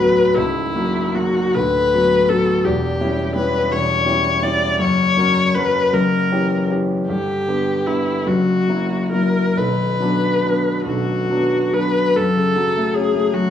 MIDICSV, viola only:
0, 0, Header, 1, 2, 480
1, 0, Start_track
1, 0, Key_signature, 2, "minor"
1, 0, Tempo, 780234
1, 220, Time_signature, 6, 3, 24, 8
1, 1194, Tempo, 712589
1, 3114, Tempo, 768246
1, 5034, Tempo, 823045
1, 5514, Tempo, 869565
1, 7434, Tempo, 778210
1, 8258, End_track
2, 0, Start_track
2, 0, Title_t, "Viola"
2, 0, Program_c, 0, 41
2, 0, Note_on_c, 0, 71, 60
2, 213, Note_on_c, 0, 64, 56
2, 222, Note_off_c, 0, 71, 0
2, 706, Note_on_c, 0, 66, 54
2, 715, Note_off_c, 0, 64, 0
2, 953, Note_on_c, 0, 71, 63
2, 962, Note_off_c, 0, 66, 0
2, 1430, Note_on_c, 0, 69, 59
2, 1441, Note_off_c, 0, 71, 0
2, 1668, Note_on_c, 0, 67, 51
2, 1678, Note_off_c, 0, 69, 0
2, 2140, Note_off_c, 0, 67, 0
2, 2144, Note_on_c, 0, 71, 59
2, 2387, Note_on_c, 0, 73, 57
2, 2397, Note_off_c, 0, 71, 0
2, 2872, Note_on_c, 0, 74, 61
2, 2882, Note_off_c, 0, 73, 0
2, 3117, Note_off_c, 0, 74, 0
2, 3127, Note_on_c, 0, 73, 64
2, 3587, Note_on_c, 0, 71, 60
2, 3596, Note_off_c, 0, 73, 0
2, 3828, Note_on_c, 0, 70, 55
2, 3837, Note_off_c, 0, 71, 0
2, 4306, Note_off_c, 0, 70, 0
2, 4541, Note_on_c, 0, 67, 56
2, 5033, Note_on_c, 0, 64, 50
2, 5042, Note_off_c, 0, 67, 0
2, 5269, Note_on_c, 0, 66, 49
2, 5278, Note_off_c, 0, 64, 0
2, 5748, Note_off_c, 0, 66, 0
2, 5751, Note_on_c, 0, 70, 52
2, 6000, Note_on_c, 0, 71, 51
2, 6009, Note_off_c, 0, 70, 0
2, 6712, Note_off_c, 0, 71, 0
2, 6715, Note_on_c, 0, 66, 50
2, 7198, Note_on_c, 0, 71, 55
2, 7207, Note_off_c, 0, 66, 0
2, 7433, Note_on_c, 0, 69, 63
2, 7442, Note_off_c, 0, 71, 0
2, 7913, Note_on_c, 0, 68, 57
2, 7922, Note_off_c, 0, 69, 0
2, 8153, Note_on_c, 0, 66, 63
2, 8162, Note_off_c, 0, 68, 0
2, 8258, Note_off_c, 0, 66, 0
2, 8258, End_track
0, 0, End_of_file